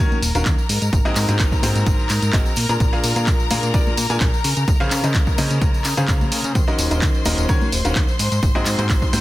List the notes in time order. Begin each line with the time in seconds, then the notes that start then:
Already playing: A#4 A#5
0.00 D#3 C#4 F#4 A#4 C#5
0.12 tambourine, high conga
0.22 D#1, open hi-hat, tambourine
0.35 D#1 D#3 C#4 F#4 A#4 F5, closed hi-hat, tambourine
0.45 D#2, kick, clap, closed hi-hat, tambourine
0.58 tambourine
0.69 G#2, open hi-hat, tambourine
0.82 G#2, closed hi-hat, tambourine
0.93 G#1, kick, closed hi-hat, tambourine
1.05 G#2 C4 F#4 G#4 D#5, tambourine
1.16 G#2, clap, open hi-hat, tambourine
1.29 G#2 C4 F#4 G#4 C5, closed hi-hat, tambourine
1.39 G#1, kick, clap, closed hi-hat, tambourine
1.52 kick, tambourine
1.62 G#2 C4 F#4 G#4 C5, open hi-hat, tambourine, high conga
1.75 G#2, closed hi-hat, tambourine
1.86 G#1, kick, closed hi-hat, tambourine
1.99 tambourine
2.09 G#2, clap, open hi-hat, tambourine
2.22 G#2, closed hi-hat, tambourine
2.33 G#1 C4 F#4 G#4 D#5, kick, clap, closed hi-hat, tambourine
2.46 tambourine
2.56 A#2, open hi-hat, tambourine
2.69 A#2 D4 G#4 A#4 A#5, closed hi-hat, tambourine
2.80 A#1, kick, closed hi-hat, tambourine
2.93 A#2 D4 G#4 A#4 F5, tambourine
3.03 A#2, open hi-hat, tambourine
3.16 A#2 D4 G#4 A#4 F5, closed hi-hat, tambourine
3.27 A#1, kick, clap, closed hi-hat, tambourine
3.40 tambourine
3.50 A#2 D4 G#4 A#4 F5, open hi-hat, tambourine, high conga
3.63 A#2, closed hi-hat, tambourine
3.74 A#1 A#2 D4 G#4 A#4 D5, kick, closed hi-hat, tambourine
3.87 tambourine, high conga
3.97 A#2, open hi-hat, tambourine
4.10 A#2 D4 G#4 A#4 G#5, closed hi-hat, tambourine
4.20 A#1, kick, clap, closed hi-hat, tambourine
4.34 tambourine
4.44 C#3, open hi-hat, tambourine
4.57 C#3, closed hi-hat, tambourine
4.68 C#2, kick, closed hi-hat, tambourine
4.80 C#3 C#4 G#4 C5 F5, tambourine
4.91 C#3, clap, open hi-hat, tambourine
5.04 C#3 C#4 G#4 C5 D#5, closed hi-hat, tambourine
5.14 C#2, kick, clap, closed hi-hat, tambourine
5.26 kick, tambourine
5.38 C#3 C#4 G#4 C5 D#5, open hi-hat, tambourine, high conga
5.50 C#3, closed hi-hat, tambourine
5.61 C#2, kick, closed hi-hat, tambourine
5.74 tambourine
5.84 C#3, clap, open hi-hat, tambourine
5.97 C#3 C#4 G#4 C5 F5, closed hi-hat, tambourine
6.08 C#2, kick, clap, closed hi-hat, tambourine
6.21 tambourine, high conga
6.32 C#3, open hi-hat, tambourine
6.44 C#3, closed hi-hat, tambourine
6.55 D#2 C5 C6, kick, closed hi-hat, tambourine
6.68 D#3 C#4 F#4 A#4 D#5, tambourine
6.78 D#1, open hi-hat, tambourine
6.91 D#1 D#3 C#4 F#4 A#4 D#5, closed hi-hat, tambourine
7.02 D#2, kick, clap, closed hi-hat, tambourine
7.14 tambourine
7.25 D#1 D#3 C#4 F#4 A#4 D#5, open hi-hat, tambourine, high conga
7.38 D#1, closed hi-hat, tambourine
7.49 D#2 D#3 C#4 F#4 A#4 C#5, kick, closed hi-hat, tambourine
7.62 tambourine, high conga
7.72 D#1, open hi-hat, tambourine
7.85 D#1 D#3 C#4 F#4 A#4 F5, closed hi-hat, tambourine
7.95 D#2, kick, clap, closed hi-hat, tambourine
8.08 tambourine
8.19 G#2, open hi-hat, tambourine
8.32 G#2, closed hi-hat, tambourine
8.42 G#1, kick, closed hi-hat, tambourine
8.55 G#2 C4 F#4 G#4 D#5, tambourine
8.66 G#2, clap, open hi-hat, tambourine
8.79 G#2 C4 F#4 G#4 C5, closed hi-hat, tambourine
8.89 G#1, kick, clap, closed hi-hat, tambourine
9.02 kick, tambourine
9.13 G#2 C4 F#4 G#4 C5, open hi-hat, tambourine, high conga